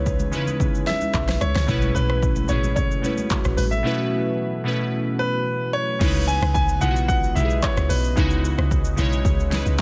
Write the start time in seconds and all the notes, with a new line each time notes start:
Already playing: C#2 C#3 E3 G#3 C#4 D#4 E4 B4 C#5
0.06 kick, shaker
0.20 high conga, shaker
0.31 C#3 G#3 C#4 E4, low conga, shaker
0.35 B4
0.47 high conga, shaker
0.60 kick, low conga, shaker
0.75 shaker
0.87 E5, snare, high conga, shaker
1.01 high conga, shaker
1.14 B1, kick, clap, low conga, shaker
1.28 cross-stick, snare, shaker
1.41 C#2 C#5, cross-stick, high conga, shaker
1.55 C#2, cross-stick, snare, shaker
1.67 B1 B2 E3 F#3 A3 B3 C#4 E4 F#4 B4, kick, shaker
1.82 high conga, shaker
1.95 B1 B4, shaker
2.09 cross-stick, high conga
2.22 kick, shaker
2.36 high conga, shaker
2.48 A1 B2 A3 C#4 E4 G#4 C#5, low conga, shaker
2.64 high conga, shaker
2.76 C#5, kick, low conga, shaker
2.91 shaker
3.02 B2 A3 C#4 E4, high conga, shaker
3.06 B4
3.18 high conga, shaker
3.30 kick, clap, low conga, shaker
3.44 A1, cross-stick, shaker
3.57 A1 B4, open hi-hat, high conga, shaker
3.71 E5, shaker
3.83 B2 A3 C#4 E4 B4
4.64 B2 A3 C#4 E4 B4
5.19 B4
5.73 C#5
5.99 C#2 C#3 E3 G#3 B3 D#4 E4 B4 D#5, kick, crash, shaker
6.14 shaker
6.27 G#5, shaker
6.42 C#2, cross-stick
6.54 G#5, kick, shaker
6.69 shaker
6.80 B1 C#3 G#3 D#4 E4 F#5, shaker
6.84 F4
6.91 F#4
6.96 shaker
7.08 F#5, kick, shaker
7.24 shaker
7.34 B1 C#3 G#3 D#4 E4 G4 E5, shaker
7.45 G#4
7.50 shaker
7.62 C#5, kick, clap, shaker
7.77 C#2, cross-stick, shaker
7.89 B1 B4, open hi-hat, shaker
8.04 shaker
8.15 C#2 C#3 G#3 C#4 D#4 E4, kick, shaker
8.19 F#4
8.31 shaker
8.45 shaker
8.58 C#2, cross-stick
8.71 kick, shaker
8.85 shaker
8.96 B1 C#3 G#3 D#4 E4 C#5, shaker
9.13 shaker
9.25 C#2, kick, shaker
9.40 shaker
9.50 C#3 G#3 D#4 E4 B4, snare, shaker
9.66 C#2, shaker